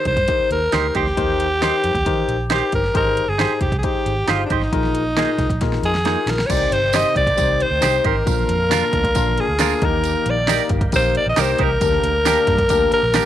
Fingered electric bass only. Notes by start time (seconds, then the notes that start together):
0.06 C2
0.17 G2
0.40 muted fingered electric bass stroke
0.51 D#2
0.73 D2
0.95 D2
1.18 D#2
1.84 F2
1.95 D#2
2.06 D#3
2.28 A#1
2.73 G1
2.95 G#1
3.28 G1
3.61 F1
3.72 C2
3.94 muted fingered electric bass stroke
4.06 G#1
4.28 G1
4.50 G#1
4.72 A#1
5.38 C2
5.50 A#1
5.61 A#2
5.82 F2
6.26 A#1
6.50 C2
6.70 G1
7.16 C2
7.38 C2
7.70 D2
7.82 C2
8.05 G#1
8.27 A#1
8.48 F2
8.93 D2
9.16 A#1
9.48 D2
9.82 D#2
10.26 A#1
10.70 G1
10.93 A#1
11.26 A#1
11.37 C2
11.59 C2
11.81 D2
12.03 D2
12.47 G2
12.70 D2
12.93 muted fingered electric bass stroke
13.03 A#1